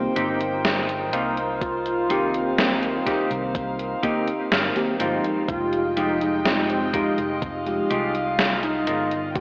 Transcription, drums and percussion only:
0.16 closed hi-hat loud
0.41 closed hi-hat soft
0.65 snare loud
0.65 closed hi-hat medium
0.89 closed hi-hat soft
1.13 closed hi-hat loud
1.37 closed hi-hat soft
1.61 kick loud
1.61 closed hi-hat medium
1.86 closed hi-hat soft
2.10 closed hi-hat loud
2.34 closed hi-hat soft
2.58 snare loud
2.58 closed hi-hat medium
2.83 closed hi-hat soft
3.07 kick medium
3.07 snare soft
3.07 closed hi-hat loud
3.31 closed hi-hat soft
3.55 kick loud
3.55 closed hi-hat medium
3.79 closed hi-hat soft
4.03 kick medium
4.03 closed hi-hat loud
4.28 closed hi-hat soft
4.52 snare loud
4.52 closed hi-hat medium
4.76 closed hi-hat soft
5.00 closed hi-hat loud
5.24 closed hi-hat soft
5.48 kick loud
5.48 closed hi-hat medium
5.73 closed hi-hat soft
5.97 closed hi-hat loud
6.21 closed hi-hat soft
6.45 snare loud
6.45 closed hi-hat medium
6.70 closed hi-hat soft
6.94 kick medium
6.94 closed hi-hat loud
7.18 closed hi-hat soft
7.42 kick loud
7.42 closed hi-hat medium
7.66 closed hi-hat soft
7.91 closed hi-hat medium
8.15 closed hi-hat soft
8.39 snare loud
8.39 closed hi-hat medium
8.63 closed hi-hat soft
8.87 closed hi-hat loud
9.11 closed hi-hat soft
9.36 kick loud
9.36 closed hi-hat medium

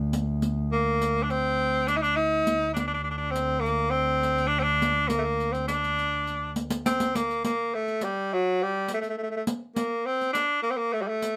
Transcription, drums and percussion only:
0.13 riq medium
0.42 riq medium
1.02 riq soft
1.30 riq soft
1.88 riq soft
2.04 riq soft
2.47 riq medium
2.77 riq medium
3.36 riq soft
3.66 riq soft
4.23 riq soft
4.38 riq soft
4.82 riq medium
5.10 riq medium
5.40 riq soft
5.55 riq soft
5.68 riq medium
5.84 riq soft
5.99 riq soft
6.27 riq soft
6.56 riq medium
6.70 riq medium
6.86 riq medium
7.00 riq medium
7.15 riq medium
7.31 riq soft
7.45 riq medium
7.88 riq soft
8.01 riq medium
8.88 riq medium
9.03 riq soft
9.47 riq medium
9.76 riq medium
10.21 riq soft
10.35 riq medium
11.22 riq soft

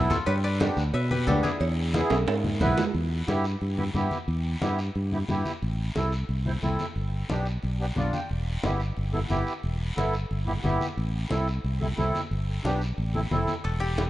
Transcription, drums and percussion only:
0.10 high conga medium
0.10 low conga medium
0.10 short guiro medium
0.27 cowbell loud
0.27 high conga soft
0.27 long guiro medium
0.60 cowbell medium
0.60 high conga loud
0.60 short guiro medium
0.77 short guiro medium
0.94 cowbell medium
0.94 high conga soft
0.94 long guiro medium
1.11 high conga medium
1.27 cowbell medium
1.27 high conga medium
1.27 low timbale medium
1.27 short guiro medium
1.44 high conga medium
1.44 short guiro medium
1.60 cowbell loud
1.60 high conga soft
1.60 long guiro medium
1.94 cowbell medium
1.94 high conga medium
1.94 short guiro medium
2.10 high timbale medium
2.10 short guiro medium
2.27 cowbell medium
2.27 high conga soft
2.27 high timbale loud
2.27 long guiro medium
2.44 high conga medium
2.60 cowbell medium
2.60 high conga medium
2.60 low conga medium
2.60 low timbale medium
2.60 short guiro medium
2.77 high conga medium
2.77 low timbale loud
2.77 short guiro medium
2.95 high conga soft
2.95 long guiro medium
3.28 high conga medium
3.28 short guiro medium
3.44 short guiro medium
3.61 high conga soft
3.61 long guiro medium
3.78 high conga medium
3.95 high conga medium
3.95 short guiro medium
4.11 high conga medium
4.11 short guiro medium
4.28 high conga soft
4.28 long guiro medium
4.62 high conga medium
4.62 short guiro medium
4.79 short guiro medium
4.95 high conga soft
4.95 long guiro medium
5.12 high conga medium
5.29 high conga medium
5.29 short guiro medium
5.45 high conga medium
5.45 short guiro medium
5.62 high conga soft
5.62 long guiro medium
5.96 high conga medium
5.96 short guiro medium
6.12 short guiro medium
6.29 high conga soft
6.29 long guiro medium
6.46 high conga medium
6.63 high conga medium
6.63 short guiro medium
6.79 high conga medium
6.79 short guiro medium
6.95 high conga soft
6.95 long guiro medium
7.29 high conga medium
7.29 short guiro medium
7.46 short guiro medium
7.63 high conga soft
7.63 long guiro medium
7.96 high conga medium
7.96 short guiro medium
8.13 high conga medium
8.13 short guiro medium
8.29 high conga soft
8.29 long guiro medium
8.63 high conga medium
8.63 short guiro medium
8.80 short guiro medium
8.97 high conga soft
8.97 long guiro medium
9.14 high conga medium
9.30 high conga medium
9.30 short guiro medium
9.47 short guiro medium
9.63 high conga soft
9.63 long guiro medium
9.97 high conga medium
9.97 short guiro medium
10.14 short guiro medium
10.31 high conga soft
10.31 long guiro medium
10.48 high conga medium
10.64 high conga medium
10.64 short guiro medium
10.81 high conga medium
10.81 short guiro medium
10.98 high conga soft
10.98 long guiro medium
11.31 high conga medium
11.31 short guiro medium
11.48 short guiro medium
11.64 high conga soft
11.64 long guiro medium
11.81 high conga medium
11.98 high conga medium
11.98 short guiro medium
12.15 high conga medium
12.15 short guiro medium
12.31 high conga soft
12.31 long guiro medium
12.65 high conga medium
12.65 short guiro medium
12.81 short guiro medium
12.98 high conga soft
12.98 long guiro medium
13.14 high conga medium
13.31 high conga medium
13.31 short guiro medium
13.47 high conga medium
13.47 short guiro medium
13.64 high conga soft
13.64 high timbale medium
13.64 long guiro medium
13.97 high conga medium
13.97 high timbale medium
13.97 short guiro medium

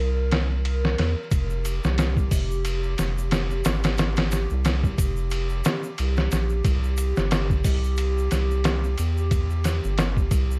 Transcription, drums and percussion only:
0.31 snare loud
0.31 ride medium
0.65 ride medium
0.85 snare medium
0.98 snare medium
0.98 ride medium
1.31 kick loud
1.31 ride medium
1.31 shaker medium
1.50 shaker soft
1.65 ride medium
1.65 shaker medium
1.84 snare medium
1.84 shaker soft
1.98 snare loud
1.98 ride medium
1.98 shaker soft
2.17 kick medium
2.17 shaker soft
2.31 kick medium
2.31 open hi-hat medium
2.31 shaker loud
2.51 shaker soft
2.65 ride medium
2.65 shaker soft
2.83 shaker soft
2.98 snare soft
2.98 ride medium
2.98 shaker medium
3.18 shaker soft
3.31 snare loud
3.31 ride medium
3.31 shaker soft
3.51 shaker soft
3.65 snare loud
3.65 ride medium
3.65 shaker loud
3.84 snare loud
3.84 ride medium
3.84 shaker soft
3.98 snare loud
3.98 ride medium
3.98 shaker medium
4.16 snare loud
4.16 ride medium
4.16 shaker soft
4.31 snare soft
4.31 ride medium
4.31 shaker medium
4.50 shaker soft
4.65 snare loud
4.65 ride medium
4.65 shaker medium
4.84 kick medium
4.84 shaker soft
4.98 kick medium
4.98 ride medium
4.98 shaker loud
5.16 shaker soft
5.31 ride medium
5.31 shaker medium
5.49 shaker soft
5.64 snare loud
5.64 ride medium
5.64 shaker loud
5.83 shaker soft
5.98 ride medium
5.98 shaker soft
6.16 snare medium
6.16 shaker soft
6.32 snare medium
6.32 ride medium
6.32 shaker medium
6.50 shaker soft
6.65 kick loud
6.65 ride medium
6.65 shaker medium
6.84 shaker soft
6.97 ride medium
6.97 shaker medium
7.16 snare medium
7.16 shaker soft
7.31 snare loud
7.31 ride medium
7.31 shaker soft
7.50 kick medium
7.50 shaker soft
7.64 kick medium
7.64 open hi-hat medium
7.64 shaker medium
7.84 shaker soft
7.97 ride medium
7.97 shaker soft
8.18 shaker soft
8.31 snare soft
8.31 ride medium
8.31 shaker medium
8.51 shaker soft
8.64 snare loud
8.64 ride medium
8.64 shaker soft
8.84 shaker soft
8.98 ride medium
8.98 shaker medium
9.17 shaker soft
9.31 kick loud
9.31 ride medium
9.31 shaker medium
9.50 shaker soft
9.64 snare medium
9.64 ride medium
9.64 shaker medium
9.84 shaker soft
9.98 snare loud
9.98 ride medium
9.98 shaker soft
10.17 kick medium
10.17 shaker soft
10.31 kick medium
10.31 ride medium
10.31 shaker medium
10.51 shaker soft

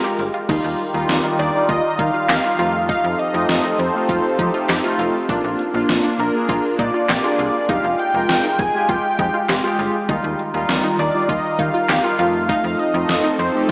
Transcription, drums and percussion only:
0.04 closed hi-hat medium
0.19 open hi-hat medium
0.34 closed hi-hat soft
0.49 kick loud
0.49 closed hi-hat medium
0.49 crash loud
0.79 closed hi-hat medium
1.09 snare loud
1.09 closed hi-hat medium
1.39 closed hi-hat medium
1.69 kick medium
1.69 closed hi-hat medium
1.99 kick loud
1.99 closed hi-hat medium
2.29 snare loud
2.29 clap medium
2.29 closed hi-hat medium
2.59 closed hi-hat medium
2.89 kick loud
2.89 closed hi-hat medium
3.19 closed hi-hat medium
3.49 snare loud
3.49 closed hi-hat medium
3.79 closed hi-hat medium
4.09 kick medium
4.09 closed hi-hat medium
4.39 kick medium
4.39 closed hi-hat medium
4.69 snare loud
4.69 clap medium
4.69 closed hi-hat medium
4.99 closed hi-hat medium
5.29 kick loud
5.29 closed hi-hat medium
5.59 closed hi-hat medium
5.89 snare loud
5.89 closed hi-hat medium
6.19 closed hi-hat medium
6.49 kick medium
6.49 closed hi-hat medium
6.79 kick loud
6.79 closed hi-hat medium
7.09 snare loud
7.09 clap medium
7.09 closed hi-hat medium
7.39 closed hi-hat medium
7.69 kick loud
7.69 closed hi-hat medium
7.99 closed hi-hat medium
8.29 snare loud
8.29 closed hi-hat medium
8.59 kick loud
8.59 closed hi-hat medium
8.89 kick medium
8.89 closed hi-hat medium
9.19 kick medium
9.19 closed hi-hat medium
9.49 snare loud
9.49 clap medium
9.49 closed hi-hat medium
9.79 open hi-hat medium
10.09 kick loud
10.09 closed hi-hat medium
10.39 closed hi-hat medium
10.69 snare loud
10.69 closed hi-hat medium
10.99 closed hi-hat medium
11.29 kick medium
11.29 closed hi-hat medium
11.59 kick medium
11.59 closed hi-hat medium
11.89 snare loud
11.89 clap medium
11.89 closed hi-hat medium
12.19 closed hi-hat medium
12.49 kick loud
12.49 closed hi-hat medium
12.79 closed hi-hat medium
13.09 snare loud
13.09 closed hi-hat medium
13.39 closed hi-hat medium

